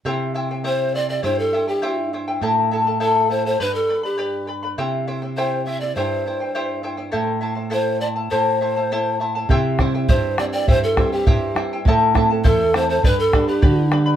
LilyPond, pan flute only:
\new Staff \with { instrumentName = "Pan flute" } { \time 2/4 \key c \major \tempo 4 = 102 r4 c''8 d''16 d''16 | c''16 a'8 g'8. r8 | r4 a'8 c''16 c''16 | b'16 a'8 g'8. r8 |
r4 c''8 e''16 d''16 | c''4. r8 | r4 c''8 d''8 | c''4. r8 |
r4 c''8 d''16 d''16 | c''16 a'8 g'8. r8 | r4 a'8 c''16 c''16 | b'16 a'8 g'8. r8 | }